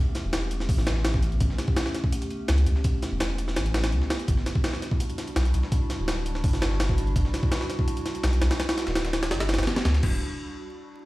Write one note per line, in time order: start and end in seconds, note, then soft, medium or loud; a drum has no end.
0.00 4.24 A3 medium
0.00 4.24 B3 medium
0.00 4.24 C#4 medium
0.00 4.24 G4 medium
0.15 snare soft
0.15 closed hi-hat medium
0.25 0.70 E1 medium
0.33 snare loud
0.33 closed hi-hat medium
0.51 closed hi-hat medium
0.60 snare soft
0.69 1.39 A1 medium
0.69 kick loud
0.69 closed hi-hat medium
0.69 open hi-hat medium
0.78 snare soft
0.78 closed hi-hat soft
0.87 snare loud
0.87 closed hi-hat medium
0.96 snare medium
1.05 snare loud
1.05 closed hi-hat medium
1.14 kick medium
1.14 snare soft
1.22 closed hi-hat medium
1.32 closed hi-hat soft
1.40 1.49 A1 medium
1.40 kick loud
1.40 closed hi-hat medium
1.50 snare soft
1.58 snare medium
1.58 closed hi-hat medium
1.68 kick medium
1.76 snare loud
1.76 closed hi-hat medium
1.86 snare medium
1.95 snare soft
1.95 closed hi-hat medium
2.04 kick medium
2.13 closed hi-hat medium
2.22 closed hi-hat soft
2.31 closed hi-hat medium
2.48 2.65 C#2 medium
2.48 snare loud
2.48 closed hi-hat medium
2.58 closed hi-hat soft
2.66 2.75 C#2 loud
2.66 closed hi-hat medium
2.76 snare soft
2.84 kick loud
2.84 closed hi-hat medium
3.02 snare soft
3.02 closed hi-hat medium
3.12 3.58 E1 medium
3.20 snare loud
3.20 closed hi-hat medium
3.38 closed hi-hat medium
3.48 snare soft
3.56 3.94 A1 medium
3.56 snare loud
3.56 closed hi-hat medium
3.66 closed hi-hat soft
3.74 snare loud
3.74 closed hi-hat medium
3.84 snare loud
3.84 snare medium
3.84 closed hi-hat medium
3.92 4.01 C#2 medium
3.92 closed hi-hat medium
4.02 snare soft
4.10 snare loud
4.10 closed hi-hat medium
4.20 closed hi-hat soft
4.28 4.37 G1 medium
4.28 9.99 G3 medium
4.28 9.99 D4 medium
4.28 9.99 E4 medium
4.28 9.99 F#4 medium
4.28 kick loud
4.28 closed hi-hat medium
4.37 snare soft
4.46 snare medium
4.46 closed hi-hat medium
4.55 kick medium
4.64 snare loud
4.64 closed hi-hat medium
4.73 snare medium
4.82 snare soft
4.82 closed hi-hat medium
4.91 kick medium
5.00 closed hi-hat medium
5.09 closed hi-hat soft
5.18 snare soft
5.18 closed hi-hat medium
5.28 closed hi-hat soft
5.36 5.52 B1 medium
5.36 snare loud
5.36 closed hi-hat medium
5.45 closed hi-hat soft
5.54 5.63 B1 loud
5.54 closed hi-hat medium
5.63 snare medium
5.72 kick loud
5.72 closed hi-hat medium
5.90 snare soft
5.90 closed hi-hat medium
5.99 6.45 D1 medium
6.08 snare loud
6.08 closed hi-hat medium
6.26 closed hi-hat medium
6.35 snare soft
6.44 7.14 G1 medium
6.44 kick loud
6.44 closed hi-hat medium
6.44 open hi-hat medium
6.53 snare soft
6.53 closed hi-hat soft
6.62 snare loud
6.62 closed hi-hat medium
6.71 snare medium
6.80 snare loud
6.80 closed hi-hat medium
6.89 kick medium
6.89 snare soft
6.98 closed hi-hat medium
7.07 closed hi-hat soft
7.16 7.24 G1 medium
7.16 kick loud
7.16 closed hi-hat medium
7.25 snare soft
7.34 snare medium
7.34 closed hi-hat medium
7.43 kick loud
7.52 snare loud
7.52 closed hi-hat medium
7.61 snare medium
7.70 snare soft
7.70 closed hi-hat medium
7.79 kick medium
7.88 closed hi-hat medium
7.97 closed hi-hat soft
8.06 snare soft
8.06 closed hi-hat medium
8.15 closed hi-hat soft
8.23 8.40 B1 medium
8.23 snare loud
8.23 closed hi-hat medium
8.33 closed hi-hat soft
8.41 8.50 B1 medium
8.41 snare loud
8.41 closed hi-hat medium
8.51 snare loud
8.51 snare soft
8.51 closed hi-hat medium
8.60 snare loud
8.60 closed hi-hat medium
8.69 snare loud
8.69 closed hi-hat medium
8.78 snare loud
8.78 snare soft
8.78 closed hi-hat medium
8.87 9.33 D1 medium
8.87 snare loud
8.87 closed hi-hat medium
8.95 snare loud
8.95 closed hi-hat medium
9.05 snare loud
9.05 closed hi-hat medium
9.13 snare medium
9.13 closed hi-hat medium
9.23 snare loud
9.23 closed hi-hat medium
9.31 9.58 G1 medium
9.31 snare loud
9.31 closed hi-hat medium
9.40 snare loud
9.40 closed hi-hat medium
9.40 closed hi-hat soft
9.49 snare medium
9.49 snare loud
9.49 closed hi-hat medium
9.54 snare medium
9.54 closed hi-hat medium
9.59 9.66 G1 medium
9.59 snare medium
9.59 closed hi-hat medium
9.63 snare medium
9.63 closed hi-hat medium
9.67 snare loud
9.67 closed hi-hat medium
9.76 snare loud
9.76 snare medium
9.76 closed hi-hat medium
9.85 10.01 D2 loud
9.85 snare loud
9.85 closed hi-hat medium
9.94 snare loud
9.94 closed hi-hat soft
9.94 closed hi-hat medium
10.03 10.20 E1 loud
10.03 kick loud
10.03 crash medium